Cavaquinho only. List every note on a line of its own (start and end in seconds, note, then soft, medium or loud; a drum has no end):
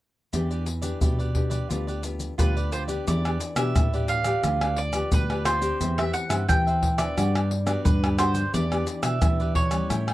0.33 0.49 E4 soft
0.33 0.49 G4 soft
0.33 0.49 B4 soft
0.33 0.49 D5 soft
0.50 0.65 G4 soft
0.50 0.65 B4 soft
0.50 0.66 D5 medium
0.66 muted cavaquinho stroke soft
0.82 1.00 G4 soft
0.82 0.99 B4 soft
0.82 0.99 D5 medium
1.01 1.17 E4 soft
1.01 1.17 G4 soft
1.01 1.18 B4 soft
1.01 1.17 D5 soft
1.19 1.50 G4 soft
1.19 1.49 B4 medium
1.19 1.49 D5 medium
1.50 1.68 G4 medium
1.50 1.68 B4 medium
1.50 1.67 D5 medium
1.69 1.85 F4 soft
1.69 1.86 G4 soft
1.69 1.86 B4 soft
1.69 1.86 D5 soft
1.87 2.02 G4 soft
1.87 2.03 B4 soft
1.87 2.03 D5 medium
2.03 muted cavaquinho stroke soft
2.38 2.54 F4 medium
2.38 2.54 G4 medium
2.38 2.55 B4 medium
2.38 2.55 D5 medium
2.56 2.72 G4 soft
2.56 2.72 B4 medium
2.56 2.72 D5 medium
2.72 2.88 F4 medium
2.72 2.89 G4 soft
2.72 2.88 B4 soft
2.72 2.87 D5 soft
2.88 3.06 G4 medium
2.88 3.05 B4 medium
2.88 3.05 D5 medium
3.08 3.23 E4 soft
3.08 3.24 G4 soft
3.08 3.24 B4 soft
3.08 3.24 D5 soft
3.25 3.40 G4 medium
3.25 3.40 B4 medium
3.25 3.40 D5 medium
3.41 muted cavaquinho stroke soft
3.57 3.74 G4 soft
3.57 3.74 B4 medium
3.57 3.73 D5 medium
3.76 3.91 E4 soft
3.76 3.92 G4 soft
3.76 3.92 B4 soft
3.76 3.92 D5 soft
3.94 4.26 G4 medium
3.94 4.25 B4 medium
3.94 4.24 D5 medium
4.25 4.43 G4 medium
4.25 4.42 B4 medium
4.25 4.42 D5 medium
4.44 4.60 F4 soft
4.44 4.60 G4 soft
4.44 4.61 B4 soft
4.44 4.61 D5 soft
4.62 4.77 G4 soft
4.62 4.77 B4 soft
4.62 4.77 D5 medium
4.78 muted cavaquinho stroke soft
4.94 5.28 G4 soft
4.94 5.28 B4 soft
4.94 5.27 D5 medium
5.30 5.44 G4 medium
5.30 5.45 B4 medium
5.30 5.46 D5 medium
5.45 5.61 F4 medium
5.45 5.62 G4 medium
5.45 5.61 B4 medium
5.45 5.60 D5 medium
5.61 5.79 G4 soft
5.61 5.78 B4 soft
5.61 5.78 D5 soft
5.80 5.96 G4 soft
5.80 5.97 B4 soft
5.80 5.96 C5 soft
5.80 5.97 E5 medium
5.98 6.13 B4 medium
5.98 6.13 C5 medium
5.98 6.14 E5 medium
6.14 muted cavaquinho stroke soft
6.29 6.47 B4 soft
6.29 6.47 C5 soft
6.29 6.46 E5 medium
6.48 6.64 G4 soft
6.48 6.65 B4 soft
6.48 6.65 C5 soft
6.48 6.65 E5 soft
6.66 6.98 B4 medium
6.66 6.98 C5 soft
6.66 6.97 E5 medium
6.98 7.15 B4 medium
6.98 7.16 C5 medium
6.98 7.15 E5 medium
7.17 7.33 F#4 soft
7.17 7.33 G4 soft
7.17 7.33 B4 soft
7.17 7.34 D5 soft
7.35 7.50 G4 soft
7.35 7.50 B4 medium
7.35 7.50 D5 medium
7.51 muted cavaquinho stroke soft
7.67 8.01 G4 soft
7.67 8.01 B4 medium
7.67 8.00 D5 medium
8.03 8.18 G4 medium
8.03 8.19 B4 medium
8.03 8.18 D5 medium
8.18 8.35 F#4 medium
8.18 8.35 G4 medium
8.18 8.34 B4 medium
8.18 8.33 D5 medium
8.34 8.52 G4 soft
8.34 8.52 B4 soft
8.34 8.51 D5 soft
8.53 8.69 E4 soft
8.53 8.70 G4 soft
8.53 8.70 B4 soft
8.53 8.70 D5 medium
8.72 8.86 G4 medium
8.72 8.87 B4 medium
8.72 8.87 D5 medium
8.87 muted cavaquinho stroke soft
9.02 9.20 G4 soft
9.02 9.20 B4 medium
9.02 9.19 D5 medium
9.22 9.38 E4 soft
9.22 9.38 G4 soft
9.22 9.38 B4 soft
9.22 9.39 D5 soft
9.40 9.71 G4 soft
9.40 9.71 B4 medium
9.40 9.69 D5 medium
9.71 9.88 G4 medium
9.71 9.88 B4 medium
9.71 9.87 D5 medium
9.90 10.05 E4 soft
9.90 10.06 A4 soft
9.90 10.06 C#5 soft
9.90 10.06 G5 soft
10.07 10.14 A4 soft
10.07 10.14 C#5 soft
10.07 10.14 G5 medium